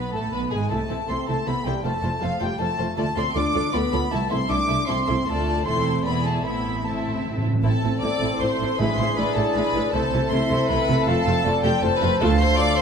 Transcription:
Already playing: double bass section B1, cello section B2, french horn section B3, viola section B3, violin section B4 B5, flute B5
0.13 double bass section A1, cello section A2, french horn section A3, viola section A3, violin section A4 A5, flute A5
0.32 double bass section B1, cello section B2, french horn section B3, viola section B3, violin section B4 B5, flute B5
0.51 double bass section G#1, cello section G#2, french horn section G#3, viola section G#3, violin section G#4 G#5, flute G#5
0.70 double bass section C2, cello section C3, french horn section A3, viola section A3 E4, violin section A4 C5 A5, flute A5
0.90 double bass section C2, cello section C3, viola section A3 E4, violin section A4 C5
1.08 double bass section C2, cello section C3, viola section A3 E4, french horn section C4, violin section A4 C5 C6, flute C6
1.28 double bass section C2, cello section C3, viola section A3 E4, french horn section A3, violin section A4 C5 A5, flute A5
1.46 double bass section C2, cello section C3, viola section A3 E4, french horn section B3, violin section A4 C5 B5, flute B5
1.64 double bass section C2, cello section C3, french horn section G3, viola section A3 E4, violin section A4 C5 G5, flute G5
1.84 double bass section F1, cello section F2, viola section A3 F4, french horn section A3, violin section A4 C5 A5, flute A5
2.02 double bass section F1, cello section F2, viola section A3 F4, violin section A4 C5
2.21 double bass section F1, cello section F2, french horn section F3, viola section A3 F4, violin section A4 C5 F5, flute F5
2.40 double bass section F1, cello section F2, french horn section G3, viola section A3 F4, violin section A4 C5 G5, flute G5
2.59 double bass section F1, cello section F2, viola section A3 F4, french horn section A3, violin section A4 C5 A5, flute A5
2.78 double bass section F1, cello section F2, viola section A3 F4, violin section A4 C5
2.97 double bass section D2, cello section D2, viola section A3 F4, french horn section A3, violin section A4 D5 A5, flute A5
3.16 cello section D2, double bass section D2, viola section A3 F4, french horn section C4, violin section A4 D5 C6, flute C6
3.35 cello section D2, double bass section D2, viola section A3 F4, french horn section D4, violin section A4 D5 D6, flute D6
3.54 cello section D2, double bass section D2, viola section A3 F4, violin section A4 D5
3.73 cello section D2, double bass section D2, viola section A3 F4, french horn section B3, violin section A4 D5 B5, flute B5
3.92 double bass section D2, cello section D2, viola section A3 F4, violin section A4 D5
4.11 double bass section C2, cello section C2, viola section A3 E4, french horn section A3, violin section A4 E5 A5, flute A5
4.30 double bass section C2, cello section C2, viola section A3 E4, french horn section C4, violin section A4 E5 C6, flute C6
4.49 double bass section C2, cello section C2, viola section A3 E4, french horn section D4, violin section A4 E5 D6, flute D6
4.68 double bass section C2, cello section C2, viola section A3 E4, violin section A4 E5
4.87 double bass section C2, cello section C2, viola section A3 E4, french horn section C4, violin section A4 E5 C6, flute C6
5.07 cello section C2, double bass section C2, viola section A3 E4, violin section A4 E5
5.26 double bass section D2, cello section D2, french horn section A3, viola section A3 F4, violin section A4 D5 A5, flute A5
5.65 double bass section E1, cello section E2, viola section A3 E4, french horn section C4, violin section A4 C5 C6, flute C6
6.04 double bass section E1, cello section E2, viola section B3 E4, french horn section B3, violin section G#4 D5 B5, flute B5
6.24 french horn section A3, violin section A5, flute A5
6.44 double bass section A1, cello section A2, timpani A2, french horn section B3, viola section C4 E4, violin section A4 E5 B5, flute B5
6.53 timpani A2
6.69 timpani A2
6.76 timpani A2
6.84 timpani A2, french horn section A3, viola section C4 E4, violin section A4 E5 A5, flute A5
6.92 timpani A2
7.00 timpani A2
7.08 timpani A2
7.15 timpani A2
7.23 timpani A2
7.30 timpani A2
7.38 timpani A2
7.46 timpani A2
7.53 timpani A2
7.63 double bass section A1, cello section A2, viola section C4 E4, french horn section C4 E4, violin section A4 A5, trumpet A4
7.83 double bass section A1, cello section A2, viola section C4 E4
8.02 double bass section A1, cello section A2, viola section C4 E4, flute A4, violin section D5 D6
8.22 double bass section A1, cello section A2, viola section C4 E4
8.40 double bass section A1, cello section A2, viola section C4 E4, flute C5, violin section C5 C6
8.60 double bass section A1, cello section A2, viola section C4 E4
8.79 double bass section A1, cello section A2, timpani A2, viola section G#3 E4, french horn section D4, trumpet G#4, violin section B4 B5, flute E5
8.98 double bass section A1, cello section A2, viola section G#3 E4, violin section C5 C6
9.17 double bass section A1, cello section A2, viola section G#3 E4, violin section B4 B5, flute D5
9.36 double bass section A1, cello section A2, viola section G#3 E4, violin section A4 A5
9.55 double bass section A1, cello section A2, viola section G#3 E4, violin section B4 B5
9.74 double bass section A1, cello section A2, viola section G#3 E4
9.93 double bass section C2, cello section C3, viola section A3 E4, french horn section C4 E4, violin section A4 A5, trumpet A4, flute C5
10.12 double bass section C2, cello section C3, viola section A3 E4
10.30 double bass section C2, cello section C3, viola section A3 E4, violin section C5 C6, flute E5
10.50 double bass section C2, cello section C3, viola section A3 E4
10.69 double bass section C2, cello section C3, viola section A3 E4, violin section B4 B5
10.88 double bass section C2, cello section C3, viola section A3 E4
11.06 double bass section F1, cello section F2, viola section A3 F4, french horn section F4, violin section A4 A5, flute F5
11.26 double bass section F1, cello section F2, viola section A3 F4
11.45 double bass section F1, cello section F2, viola section A3 F4, flute D5
11.63 double bass section F1, cello section F2, viola section A3 F4, violin section G4 G5
11.82 double bass section F1, cello section F2, viola section A3 F4, violin section A4 A5, flute C5
12.01 double bass section F1, cello section F2, viola section A3 F4, violin section B4 B5
12.20 double bass section D2, cello section D2, viola section A3 F4, french horn section A3 F4, violin section A4 A5, trumpet A4, flute F5
12.39 violin section C5 C6
12.58 violin section D5 D6, flute F5
12.77 violin section C5 C6

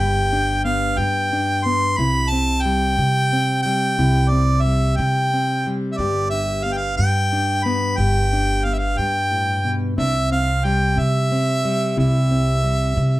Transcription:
Already playing: harmonica G5
0.00 upright bass G1, steel-string acoustic guitar G2 G4
0.33 steel-string acoustic guitar D4
0.64 steel-string acoustic guitar B3, harmonica F5
0.98 upright bass G2, harmonica G5, muted steel-string acoustic guitar stroke
1.33 steel-string acoustic guitar D4
1.65 steel-string acoustic guitar B3, harmonica C6
1.97 upright bass C2, steel-string acoustic guitar C3 E4, harmonica B5
2.30 steel-string acoustic guitar C4, harmonica A5
2.62 steel-string acoustic guitar G3, harmonica G5
2.98 upright bass C3, muted steel-string acoustic guitar stroke
3.33 steel-string acoustic guitar C4
3.62 steel-string acoustic guitar G3, harmonica G5
3.98 upright bass C2, steel-string acoustic guitar C3 E4
4.29 steel-string acoustic guitar C4, harmonica D5
4.62 harmonica E5
4.66 steel-string acoustic guitar G3
4.96 upright bass C3, harmonica G5, muted steel-string acoustic guitar stroke
5.34 steel-string acoustic guitar C4
5.67 steel-string acoustic guitar G3
5.92 harmonica E5
5.98 upright bass G1, steel-string acoustic guitar G2 G4, harmonica D5
6.30 steel-string acoustic guitar D4, harmonica E5
6.64 steel-string acoustic guitar B3, harmonica F5
6.73 harmonica G5
6.77 harmonica F5
6.97 upright bass G2, harmonica G5, muted steel-string acoustic guitar stroke
7.33 steel-string acoustic guitar D4
7.64 steel-string acoustic guitar B3, harmonica B5
7.97 upright bass G1, steel-string acoustic guitar G2 G4, harmonica G5
8.33 steel-string acoustic guitar D4
8.64 steel-string acoustic guitar B3, harmonica F5
8.74 harmonica E5
8.78 harmonica F5
8.98 upright bass G2, steel-string acoustic guitar G2, harmonica G5
9.31 steel-string acoustic guitar A2
9.65 steel-string acoustic guitar B2
9.98 upright bass C2, steel-string acoustic guitar C3 D4, harmonica E5
10.32 steel-string acoustic guitar C4, harmonica F5
10.64 steel-string acoustic guitar G3, harmonica G5
10.97 upright bass C3, harmonica E5, muted steel-string acoustic guitar stroke
11.32 steel-string acoustic guitar C4
11.65 steel-string acoustic guitar G3
11.97 upright bass C2, steel-string acoustic guitar C3 E4, harmonica E5
12.31 steel-string acoustic guitar C4
12.64 steel-string acoustic guitar G3
12.97 upright bass C3, muted steel-string acoustic guitar stroke

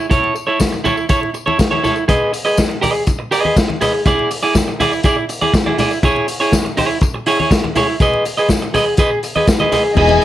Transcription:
0.10 clean electric guitar E4 A4 C#5, kick, closed hi-hat, tambourine, muted conga, low conga
0.24 muted conga
0.35 muted clean electric guitar stroke, tambourine
0.47 clean electric guitar E4 A4 C#5
0.60 muted clean electric guitar stroke, kick, snare, closed hi-hat, tambourine, muted conga, high conga
0.72 muted clean electric guitar stroke, tambourine, muted conga
0.84 clean electric guitar E4 A4 C#5, tambourine, high conga, low conga
0.97 muted clean electric guitar stroke, tambourine
1.09 clean electric guitar E4 A4 C#5, kick, closed hi-hat, tambourine, muted conga
1.22 muted clean electric guitar stroke, muted conga
1.34 muted clean electric guitar stroke, tambourine
1.46 clean electric guitar E4 A4 C#5, high conga
1.58 muted clean electric guitar stroke, kick, snare, closed hi-hat, tambourine, muted conga
1.71 clean electric guitar E4 A4 C#5, high conga
1.84 clean electric guitar E4 A4 C#5, snare, tambourine, low conga
1.96 muted clean electric guitar stroke, tambourine
2.08 clean electric guitar G#4 B4 D#5, kick, closed hi-hat, tambourine, muted conga, low conga
2.33 muted clean electric guitar stroke, open hi-hat, tambourine
2.45 clean electric guitar G#4 B4 D#5, tambourine
2.57 kick, snare, closed hi-hat, tambourine, high conga
2.69 muted clean electric guitar stroke, muted conga
2.81 clean electric guitar G#4 B4 D#5, open hi-hat, tambourine, high conga, low conga
2.94 muted clean electric guitar stroke, tambourine
3.07 muted clean electric guitar stroke, kick, closed hi-hat, tambourine, muted conga
3.19 muted clean electric guitar stroke
3.31 clean electric guitar G#4 B4 D#5, open hi-hat, tambourine
3.44 clean electric guitar G#4 B4 D#5, high conga
3.56 muted clean electric guitar stroke, kick, snare, closed hi-hat, tambourine, muted conga
3.68 muted clean electric guitar stroke, muted conga, high conga
3.81 clean electric guitar G#4 B4 D#5, snare, open hi-hat, tambourine, low conga
3.93 muted clean electric guitar stroke
4.06 clean electric guitar E4 G#4 D5, kick, closed hi-hat, tambourine, muted conga, low conga
4.19 muted conga
4.31 muted clean electric guitar stroke, open hi-hat, tambourine
4.42 clean electric guitar E4 G#4 D5, tambourine
4.55 muted clean electric guitar stroke, kick, snare, closed hi-hat, tambourine, high conga
4.68 muted clean electric guitar stroke, tambourine
4.80 clean electric guitar E4 G#4 D5, open hi-hat, tambourine, high conga, low conga
4.92 muted clean electric guitar stroke, tambourine
5.03 clean electric guitar E4 G#4 D5, kick, closed hi-hat, tambourine
5.17 muted clean electric guitar stroke
5.29 muted clean electric guitar stroke, open hi-hat, tambourine
5.41 clean electric guitar E4 G#4 D5, high conga
5.54 muted clean electric guitar stroke, kick, snare, closed hi-hat, tambourine
5.66 clean electric guitar E4 G#4 D5, high conga
5.78 clean electric guitar E4 G#4 D5, snare, open hi-hat, tambourine, low conga
5.91 muted clean electric guitar stroke, tambourine
6.03 clean electric guitar E4 G#4 C#5, kick, closed hi-hat, tambourine, muted conga, low conga
6.16 muted conga
6.28 muted clean electric guitar stroke, open hi-hat, tambourine
6.40 clean electric guitar E4 G#4 C#5, tambourine
6.52 kick, snare, closed hi-hat, tambourine, high conga
6.65 muted clean electric guitar stroke, tambourine, muted conga
6.77 clean electric guitar E4 G#4 C#5, open hi-hat, tambourine, high conga, low conga
6.90 muted clean electric guitar stroke, tambourine
7.01 muted clean electric guitar stroke, kick, closed hi-hat, tambourine, muted conga
7.14 muted clean electric guitar stroke
7.26 clean electric guitar E4 G#4 C#5, open hi-hat, tambourine
7.40 clean electric guitar E4 G#4 C#5, high conga
7.51 muted clean electric guitar stroke, kick, snare, closed hi-hat, tambourine
7.64 muted clean electric guitar stroke, high conga
7.75 clean electric guitar E4 G#4 C#5, snare, open hi-hat, tambourine, low conga
7.88 muted clean electric guitar stroke
8.00 clean electric guitar G#4 B4 D#5, kick, closed hi-hat, tambourine, muted conga, low conga
8.13 muted conga
8.25 muted clean electric guitar stroke, open hi-hat, tambourine
8.37 clean electric guitar G#4 B4 D#5, tambourine
8.49 muted clean electric guitar stroke, kick, snare, closed hi-hat, tambourine, muted conga, high conga
8.62 muted clean electric guitar stroke, tambourine, muted conga
8.74 clean electric guitar G#4 B4 D#5, open hi-hat, tambourine, high conga, low conga
8.86 muted clean electric guitar stroke
8.97 clean electric guitar G#4 B4 D#5, kick, closed hi-hat, tambourine, muted conga
9.11 muted clean electric guitar stroke
9.23 muted clean electric guitar stroke, open hi-hat, tambourine
9.36 clean electric guitar G#4 B4 D#5, high conga
9.47 muted clean electric guitar stroke, kick, snare, closed hi-hat, tambourine, muted conga
9.60 clean electric guitar G#4 B4 D#5, muted conga, high conga
9.72 clean electric guitar G#4 B4 D#5, snare, open hi-hat, tambourine, low conga
9.84 muted clean electric guitar stroke
9.95 fingered electric bass E1, tine electric piano E3 G#3 B3 D#4 G#4, tonewheel organ E3 B3 G#4 D#5, string section E4 D#5 G#5, clean electric guitar G#4 B4 D#5, kick, crash, low conga
10.09 muted conga, high conga

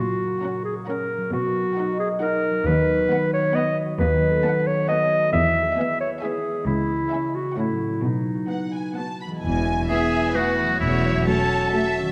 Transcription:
Already playing: cello section A#2, harp A#2 F#3 A#3 C#4 F#4 A#4, clarinet F#4
0.12 harp A#3
0.27 harp F#4
0.42 viola section C#4, harp A#4, violin section F#5 A#5
0.57 harp C#5
0.64 clarinet G#4
0.72 harp A#4
0.87 harp C#4, viola section C#4, clarinet A#4, violin section F#5 A#5
1.02 harp A#3
1.17 harp F#3
1.32 harp B2, cello section B2, clarinet F#4
1.47 harp A#3
1.62 harp F#4
1.76 viola section D#4, harp A#4, violin section F#5 A#5
1.92 harp D#5
1.99 clarinet G#4
2.06 harp A#4
2.21 harp D#4, viola section D#4, clarinet A#4, violin section F#5 A#5
2.36 harp A#3
2.51 harp F#3
2.66 cello section D#2, harp D#3, clarinet B4
2.81 harp B3
2.97 harp F#4
3.11 viola section B3, harp B4, violin section F#5 B5
3.26 harp F#5
3.33 clarinet C#5
3.41 harp B4
3.55 viola section B3, harp F#4, clarinet D#5, violin section F#5 B5
3.70 harp B3
3.85 harp F#3
3.99 cello section D#2, harp D#3, clarinet B4
4.15 harp B3
4.29 harp A4
4.44 viola section B3, harp B4, violin section F#5 A5
4.59 harp F#5
4.67 clarinet C#5
4.74 harp B4
4.88 viola section B3, harp F#4, clarinet D#5, violin section F#5 A5
5.04 harp B3
5.18 harp A3
5.33 cello section E2, harp E3, clarinet E5
5.48 harp B3
5.62 harp G#4
5.77 viola section B3, harp B4, violin section E5 G#5
5.92 harp E5
6.01 clarinet C#5
6.07 harp B4
6.22 viola section B3, harp E4, clarinet G#4, violin section E5 G#5
6.37 harp B3
6.51 harp G#3
6.66 cello section C#2, harp C#3, clarinet E4
6.81 harp C#4
6.96 harp G#4
7.11 viola section C#4, harp C#5, violin section E5 G#5
7.26 harp E5
7.35 clarinet F#4
7.41 harp C#5
7.56 cello section A2, harp A2, viola section C#4, clarinet E4, violin section F#5
7.73 harp F#3
7.88 harp C#4 F#4
8.03 cello section B2, harp B2, clarinet D#4
8.19 harp B3
8.35 harp F#4
8.49 viola section B3, harp B4, violin section F#5
8.66 harp F#5
8.73 violin section G#5
8.82 harp B4
8.96 viola section B3, harp F#4, violin section F#5 A5
9.13 harp B3
9.20 violin section B5
9.26 harp E3 F#3
9.30 harp G#3
9.35 harp B3
9.39 cello section E2, harp E4
9.44 double bass section E1, french horn section B3 E4, violin section G#5
9.89 viola section E3 B3, clarinet B3, oboe G#4, violin section E5 G#5
10.35 viola section E3 B3, clarinet A3, oboe F#4, violin section B4 F#5
10.62 harp E3
10.67 harp F#3
10.71 harp C#4
10.76 harp F#4
10.80 double bass section E1, cello section E2, clarinet A3, french horn section C#4 F#4, oboe E4, violin section C#5 E5
11.27 viola section F#3 A3, clarinet C#4, oboe A4, violin section C#5 A5
11.73 viola section F#3 A3, violin section E5
12.00 harp D#3
12.05 harp F#3

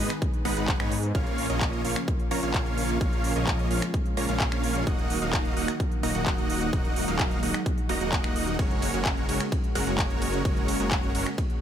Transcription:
Already playing: analog synth pad D#3 G#3 B3 G#4
0.00 supersaw synth G#3 B3 D#4 B4 D#5
0.10 finger snap, closed hi-hat
0.22 kick, closed hi-hat
0.34 closed hi-hat
0.45 detuned saw bass G#1, supersaw synth G#3 B3 D#4 B4 F#5, open hi-hat
0.57 detuned saw bass G#1, supersaw synth G#3 B3 D#4 B4 F#5, closed hi-hat
0.68 kick, clap, closed hi-hat
0.80 detuned saw bass G#2, supersaw synth G#3 B3 D#4 B4 C#5, finger snap, closed hi-hat
0.92 open hi-hat
1.03 closed hi-hat
1.15 detuned saw bass A#1, analog synth pad C#3 F3 A#3 F4, supersaw synth A#3 C#4 F4 C#5 F5, kick, closed hi-hat
1.26 closed hi-hat
1.38 open hi-hat
1.50 detuned saw bass A#1, supersaw synth A#3 C#4 F4 C#5 D#5, closed hi-hat
1.61 finger snap, kick, clap, closed hi-hat
1.73 closed hi-hat
1.85 detuned saw bass A#1, supersaw synth A#3 C#4 F4 C#5 F5, open hi-hat
1.96 finger snap
2.08 kick, closed hi-hat
2.19 closed hi-hat
2.31 detuned saw bass A#1, supersaw synth A#3 C#4 F4 C#5 A#5, open hi-hat
2.43 detuned saw bass A#1, supersaw synth A#3 C#4 F4 C#5 F5, closed hi-hat
2.54 kick, clap, closed hi-hat
2.66 closed hi-hat
2.78 open hi-hat
2.89 closed hi-hat
3.01 detuned saw bass A#1, analog synth pad G#3, supersaw synth A#3 C#4 F4 C#5 F5, kick, closed hi-hat
3.13 closed hi-hat
3.24 open hi-hat
3.36 detuned saw bass A#1, supersaw synth A#3 C#4 F4 C#5 D#5, closed hi-hat
3.47 kick, clap, closed hi-hat
3.59 closed hi-hat
3.71 detuned saw bass A#1, supersaw synth A#3 C#4 F4 C#5 F5, open hi-hat
3.82 finger snap, closed hi-hat
3.94 kick, closed hi-hat
4.06 closed hi-hat
4.17 detuned saw bass A#1, supersaw synth A#3 C#4 F4 C#5 A#5, open hi-hat
4.29 detuned saw bass A#1, supersaw synth A#3 C#4 F4 C#5 F5, closed hi-hat
4.40 kick, clap, closed hi-hat
4.52 finger snap, closed hi-hat
4.64 open hi-hat
4.75 closed hi-hat
4.87 detuned saw bass D#1, analog synth pad D#3 F#3 A#3 F#4, supersaw synth A#3 D#4 F#4 D#5 F#5, kick, closed hi-hat
4.99 closed hi-hat
5.10 open hi-hat
5.22 detuned saw bass D#1, supersaw synth A#3 D#4 F#4 D#5 F5, closed hi-hat
5.33 finger snap, kick, clap, closed hi-hat
5.45 closed hi-hat
5.57 detuned saw bass D#1, supersaw synth A#3 D#4 F#4 D#5 F#5, open hi-hat
5.68 finger snap, closed hi-hat
5.80 kick, closed hi-hat
5.92 closed hi-hat
6.03 detuned saw bass D#1, supersaw synth A#3 D#4 F#4 D#5 A#5, open hi-hat
6.15 detuned saw bass D#1, supersaw synth A#3 D#4 F#4 D#5 F#5, closed hi-hat
6.26 kick, clap, closed hi-hat
6.38 closed hi-hat
6.50 open hi-hat
6.61 closed hi-hat
6.73 detuned saw bass D#1, analog synth pad G#3, supersaw synth A#3 D#4 F#4 D#5 F#5, kick, closed hi-hat
6.85 closed hi-hat
6.96 open hi-hat
7.08 detuned saw bass D#1, supersaw synth A#3 D#4 F#4 D#5 F5, closed hi-hat
7.19 finger snap, kick, clap, closed hi-hat
7.31 closed hi-hat
7.43 detuned saw bass D#1, supersaw synth A#3 D#4 F#4 D#5 F#5, open hi-hat
7.54 finger snap, closed hi-hat
7.66 kick, closed hi-hat
7.78 closed hi-hat
7.89 detuned saw bass D#1, supersaw synth A#3 D#4 F#4 D#5 A#5, open hi-hat
8.01 detuned saw bass D#1, supersaw synth A#3 D#4 F#4 D#5 F#5, closed hi-hat
8.12 kick, clap, closed hi-hat
8.24 finger snap, closed hi-hat
8.36 open hi-hat
8.47 closed hi-hat
8.59 detuned saw bass F#1, analog synth pad C#3 A#3, supersaw synth G#3 C#4 F#4 A#4 C#5, kick, closed hi-hat, ride
8.71 closed hi-hat
8.82 open hi-hat, ride
8.94 detuned saw bass F#1, supersaw synth G#3 C#4 F#4 A#4 C#5, closed hi-hat
9.05 finger snap, kick, clap, closed hi-hat, ride
9.17 closed hi-hat
9.29 detuned saw bass F#1, supersaw synth G#3 C#4 F#4 A#4 C#5, open hi-hat, ride
9.40 finger snap, closed hi-hat
9.52 kick, closed hi-hat, ride
9.64 closed hi-hat
9.75 detuned saw bass F#1, supersaw synth G#3 C#4 F#4 A#4 F#5, open hi-hat, ride
9.87 detuned saw bass F#1, supersaw synth G#3 C#4 F#4 A#4 C#5, closed hi-hat
9.98 kick, clap, closed hi-hat, ride
10.10 closed hi-hat
10.22 open hi-hat, ride
10.33 closed hi-hat
10.45 detuned saw bass F#1, supersaw synth G#3 C#4 F#4 A#4 C#5, kick, closed hi-hat, ride
10.57 closed hi-hat
10.68 open hi-hat, ride
10.80 detuned saw bass F#1, supersaw synth G#3 C#4 F#4 A#4 C#5, closed hi-hat
10.91 kick, clap, closed hi-hat, ride
11.03 closed hi-hat
11.15 detuned saw bass F#1, supersaw synth G#3 C#4 F#4 A#4 C#5, open hi-hat, ride
11.26 finger snap, closed hi-hat
11.38 kick, closed hi-hat, ride
11.50 closed hi-hat

